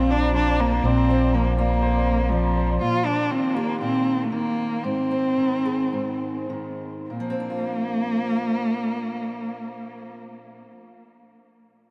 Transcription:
0.00 0.80 A#1 medium
0.00 0.84 F2 medium
0.00 0.34 F3 medium
0.00 0.12 C4 medium
0.00 0.81 C4 soft
0.00 1.57 F4 medium
0.10 0.35 D4 medium
0.10 0.46 D5 medium
0.22 0.58 A#5 medium
0.34 0.81 F3 medium
0.34 0.62 D4 medium
0.34 0.70 C5 medium
0.47 0.82 D5 medium
0.59 0.86 A#3 medium
0.59 0.95 A#5 medium
0.72 1.07 C5 medium
0.83 2.76 A#1 medium
0.83 1.82 A#2 medium
0.83 1.35 C4 medium
0.83 1.19 D5 medium
0.96 1.31 A#5 medium
1.08 2.78 C4 medium
1.08 1.57 C5 medium
1.21 1.56 D5 medium
1.33 2.31 F3 medium
1.33 1.58 A#3 medium
1.33 1.68 A#5 medium
1.58 2.32 A#3 medium
1.58 2.81 F4 medium
1.58 1.93 D5 medium
1.70 2.05 A#5 medium
1.82 2.81 F2 medium
1.82 2.18 C5 medium
1.94 2.30 D5 medium
2.07 2.42 A#5 medium
2.19 2.55 C5 soft
2.31 2.80 F3 medium
2.31 2.78 F3 medium
2.31 2.67 D5 medium
2.44 2.81 A#5 medium
2.56 2.81 C5 medium
2.68 2.81 D5 medium
2.81 3.30 A#2 medium
2.81 3.07 F4 medium
3.05 4.80 A#3 soft
3.05 3.32 D4 medium
3.30 4.31 D#3 medium
3.30 3.57 C4 medium
3.55 3.80 A#3 medium
3.55 4.80 G4 medium
3.81 4.31 A#2 medium
3.81 4.24 C4 medium
4.23 4.33 A3 soft
4.31 5.36 D#3 medium
4.31 4.84 A#3 medium
4.83 5.91 G#2 medium
4.83 6.49 C4 medium
5.11 7.06 C4 soft
5.37 6.48 D#3 soft
5.65 7.06 G#4 soft
5.93 7.06 G#2 medium
6.49 7.09 D#3 soft
7.09 10.60 A#2 medium
7.09 10.17 A#3 medium
7.20 10.70 F3 medium
7.30 10.80 C4 medium
7.40 10.90 D4 soft
7.50 11.00 F4 soft

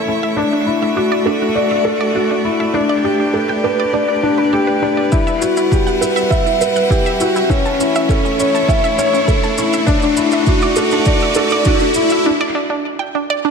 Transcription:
0.00 0.38 E3 medium
0.00 5.13 A3 medium
0.00 0.07 E4 medium
0.00 1.33 E4 medium
0.00 0.40 A4 medium
0.00 0.38 C#5 medium
0.00 0.40 C#5 medium
0.00 0.40 E5 medium
0.00 3.70 E5 medium
0.00 riser medium
0.07 0.22 C#4 medium
0.07 0.36 E4 medium
0.23 0.37 E5 medium
0.36 0.65 D4 medium
0.36 0.48 D4 medium
0.53 0.59 D4 medium
0.53 2.75 F#4 medium
0.66 0.95 E4 medium
0.78 5.98 D5 medium
0.78 mid tom medium
0.83 0.93 E5 medium
0.96 1.11 D4 medium
0.96 1.25 F#4 medium
1.12 1.26 D5 loud
1.26 1.37 D4 medium
1.26 1.43 A4 medium
1.42 1.48 D4 medium
1.55 1.73 D5 medium
1.71 1.81 E5 medium
1.71 mid tom medium
1.85 2.00 D4 medium
1.85 2.14 A4 medium
2.01 2.15 D5 loud
2.15 2.26 D4 medium
2.15 2.44 F#4 medium
2.31 2.37 D4 medium
2.44 2.73 E4 medium
2.60 2.71 E5 medium
2.60 mid tom medium
2.74 3.03 D4 loud
2.74 2.89 D4 medium
2.81 5.13 G4 medium
2.89 3.04 D5 medium
3.04 3.15 D4 medium
3.04 3.33 G4 medium
3.04 8.45 B4 medium
3.20 3.26 D4 medium
3.34 3.62 A4 medium
3.48 3.60 G5 medium
3.48 mid tom medium
3.64 3.78 D4 medium
3.64 3.81 B4 medium
3.80 3.94 D5 loud
3.93 4.04 D4 medium
3.93 4.11 D5 medium
4.08 4.15 D4 medium
4.23 4.52 D4 medium
4.38 4.49 B4 medium
4.38 mid tom medium
4.53 4.81 G4 medium
4.53 4.63 A4 medium
4.67 4.78 B4 medium
4.82 5.11 D4 medium
4.82 4.93 D4 medium
4.97 5.08 D5 medium
5.12 7.51 G3 medium
5.12 5.41 E4 medium
5.12 5.27 E4 medium
5.12 kick loud
5.12 shaker soft
5.27 5.41 E5 medium
5.27 shaker soft
5.35 8.46 F#5 medium
5.41 5.53 E4 medium
5.41 5.70 F#4 medium
5.41 shaker medium
5.57 5.63 E4 medium
5.57 shaker soft
5.71 6.00 G4 medium
5.71 kick medium
5.71 shaker soft
5.85 12.26 E5 medium
5.85 5.97 F#5 medium
5.85 mid tom medium
5.85 shaker soft
6.01 6.16 E4 medium
6.01 6.18 B4 medium
6.01 shaker medium
6.16 6.31 E5 loud
6.16 shaker soft
6.30 6.42 E4 medium
6.30 6.48 E5 medium
6.30 kick loud
6.30 shaker soft
6.46 6.53 E4 medium
6.46 shaker soft
6.61 6.89 B4 medium
6.61 shaker medium
6.76 6.86 F#5 medium
6.76 mid tom medium
6.76 shaker soft
6.90 7.05 E4 medium
6.90 7.19 G4 medium
6.90 kick medium
6.90 shaker soft
7.06 7.20 E5 loud
7.06 shaker soft
7.20 7.31 E4 medium
7.20 7.49 F#4 medium
7.20 shaker medium
7.36 7.42 E4 medium
7.36 shaker soft
7.50 9.88 E3 medium
7.50 7.78 C#4 medium
7.50 kick medium
7.50 shaker soft
7.65 7.76 A5 medium
7.65 mid tom medium
7.65 shaker soft
7.74 12.26 A3 medium
7.79 7.94 C#4 medium
7.79 8.08 E4 medium
7.79 shaker medium
7.96 8.10 E5 loud
7.96 shaker soft
8.01 10.75 E4 medium
8.09 8.21 C#4 medium
8.09 8.38 A4 medium
8.09 kick loud
8.09 shaker soft
8.15 9.89 C#5 medium
8.25 8.31 C#4 medium
8.25 shaker soft
8.40 8.57 C#5 medium
8.40 shaker medium
8.55 8.65 A5 medium
8.55 mid tom medium
8.55 shaker soft
8.68 8.83 C#4 medium
8.68 8.86 E5 loud
8.68 kick loud
8.68 shaker soft
8.84 8.98 E5 loud
8.84 shaker soft
8.98 9.09 C#4 medium
8.98 9.27 C#5 loud
8.98 shaker medium
9.13 9.20 C#4 medium
9.13 shaker soft
9.28 9.56 A4 medium
9.28 kick medium
9.28 shaker soft
9.43 9.54 A5 medium
9.43 mid tom medium
9.43 shaker soft
9.58 9.72 C#4 medium
9.58 9.86 E4 medium
9.58 shaker medium
9.73 9.88 E5 loud
9.73 shaker soft
9.87 10.16 D4 loud
9.87 9.98 D4 medium
9.87 kick medium
9.87 shaker soft
9.94 12.26 F#4 medium
10.02 10.09 D4 medium
10.02 shaker soft
10.17 10.45 E4 medium
10.17 shaker medium
10.32 10.43 E5 medium
10.32 mid tom medium
10.32 shaker soft
10.46 10.62 D4 medium
10.46 10.75 F#4 medium
10.46 kick loud
10.46 shaker soft
10.61 10.77 D5 loud
10.61 12.26 D5 medium
10.61 shaker soft
10.76 10.88 D4 medium
10.76 10.94 A4 medium
10.76 shaker medium
10.91 10.99 D4 medium
10.91 shaker soft
11.05 11.24 D5 medium
11.05 kick medium
11.05 shaker soft
11.20 11.32 E5 medium
11.20 mid tom medium
11.20 shaker soft
11.35 11.51 D4 medium
11.35 11.64 A4 medium
11.35 shaker medium
11.50 11.66 D5 loud
11.50 shaker soft
11.65 11.77 D4 medium
11.65 11.94 F#4 medium
11.65 kick medium
11.65 shaker soft
11.79 11.88 D4 medium
11.79 shaker soft
11.94 12.24 E4 medium
11.94 shaker medium
12.10 12.22 E5 medium
12.10 mid tom medium
12.10 shaker soft
12.26 12.40 D4 medium
12.41 12.55 D5 loud
12.55 12.65 D4 medium
12.70 12.76 D4 medium
12.99 13.10 G5 medium
13.15 13.29 D4 medium
13.30 13.44 D5 loud
13.45 13.51 D4 medium

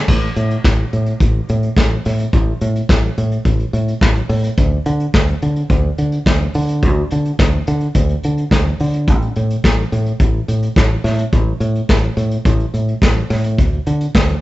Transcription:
0.08 0.27 A1 loud
0.08 kick loud
0.08 crash loud
0.36 0.55 A2 loud
0.36 closed hi-hat medium
0.51 closed hi-hat soft
0.64 0.84 A1 loud
0.64 kick loud
0.64 snare loud
0.93 1.12 A2 medium
0.93 closed hi-hat medium
1.06 closed hi-hat soft
1.20 1.40 A1 medium
1.20 kick loud
1.20 closed hi-hat medium
1.49 1.68 A2 loud
1.49 closed hi-hat medium
1.63 closed hi-hat soft
1.77 1.96 A1 medium
1.77 kick loud
1.77 snare loud
2.05 2.25 A2 loud
2.05 snare soft
2.05 open hi-hat medium
2.19 closed hi-hat medium
2.33 2.52 A1 loud
2.33 kick loud
2.33 closed hi-hat medium
2.61 2.80 A2 loud
2.61 closed hi-hat medium
2.76 closed hi-hat soft
2.89 3.08 A1 loud
2.89 kick loud
2.89 snare loud
3.18 3.37 A2 loud
3.18 closed hi-hat medium
3.31 closed hi-hat soft
3.45 3.64 A1 loud
3.45 kick medium
3.45 closed hi-hat medium
3.60 closed hi-hat soft
3.73 3.92 A2 loud
3.73 closed hi-hat medium
3.88 closed hi-hat soft
4.01 4.21 A1 medium
4.01 kick loud
4.01 snare loud
4.15 closed hi-hat soft
4.29 4.49 A2 loud
4.29 open hi-hat medium
4.44 closed hi-hat medium
4.58 4.77 D2 loud
4.58 kick loud
4.58 closed hi-hat medium
4.86 5.05 D3 loud
4.86 closed hi-hat medium
5.00 closed hi-hat soft
5.14 5.33 D2 medium
5.14 kick loud
5.14 snare loud
5.28 closed hi-hat soft
5.42 5.61 D3 loud
5.42 closed hi-hat medium
5.56 closed hi-hat soft
5.70 5.89 D2 loud
5.70 kick loud
5.70 closed hi-hat medium
5.98 6.18 D3 medium
5.98 closed hi-hat medium
6.12 closed hi-hat soft
6.26 6.45 D2 loud
6.26 kick loud
6.26 snare loud
6.40 closed hi-hat soft
6.54 6.85 D3 loud
6.54 open hi-hat medium
6.69 closed hi-hat medium
6.83 7.02 D2 loud
6.83 kick loud
6.83 closed hi-hat medium
7.11 7.31 D3 loud
7.11 closed hi-hat medium
7.25 closed hi-hat soft
7.39 7.58 D2 medium
7.39 kick loud
7.39 snare loud
7.67 7.87 D3 loud
7.67 closed hi-hat medium
7.81 closed hi-hat soft
7.95 8.14 D2 loud
7.95 kick loud
7.95 closed hi-hat medium
8.09 closed hi-hat soft
8.23 8.43 D3 medium
8.23 closed hi-hat medium
8.37 closed hi-hat soft
8.51 8.71 D2 loud
8.51 kick loud
8.51 snare loud
8.79 9.10 D3 loud
8.79 open hi-hat medium
8.94 closed hi-hat soft
9.08 9.27 A1 loud
9.08 kick loud
9.08 closed hi-hat medium
9.22 closed hi-hat soft
9.36 9.55 A2 medium
9.36 closed hi-hat medium
9.50 closed hi-hat soft
9.64 9.83 A1 medium
9.64 kick loud
9.64 snare loud
9.92 10.11 A2 loud
9.92 closed hi-hat medium
10.06 closed hi-hat soft
10.20 10.39 A1 loud
10.20 kick loud
10.20 closed hi-hat medium
10.48 10.67 A2 loud
10.48 closed hi-hat medium
10.62 closed hi-hat soft
10.76 10.96 A1 loud
10.76 kick loud
10.76 snare loud
11.04 11.24 A2 loud
11.04 snare soft
11.04 open hi-hat medium
11.19 closed hi-hat medium
11.33 11.52 A1 loud
11.33 kick loud
11.33 closed hi-hat medium
11.60 11.80 A2 loud
11.60 closed hi-hat medium
11.76 closed hi-hat soft
11.89 12.09 A1 medium
11.89 kick loud
11.89 snare loud
12.17 12.36 A2 loud
12.17 closed hi-hat medium
12.31 closed hi-hat soft
12.45 12.65 A1 loud
12.45 kick loud
12.45 closed hi-hat medium
12.60 closed hi-hat soft
12.74 12.93 A2 medium
12.74 closed hi-hat medium
12.88 closed hi-hat soft
13.02 13.21 A1 loud
13.02 kick loud
13.02 snare loud
13.15 closed hi-hat soft
13.30 13.59 A2 loud
13.30 snare soft
13.30 open hi-hat medium
13.44 closed hi-hat soft
13.58 13.78 D2 loud
13.58 kick loud
13.58 closed hi-hat medium
13.73 closed hi-hat soft
13.86 14.06 D3 medium
13.86 closed hi-hat medium
14.01 closed hi-hat soft
14.15 14.34 D2 medium
14.15 kick loud
14.15 snare loud
14.29 closed hi-hat soft

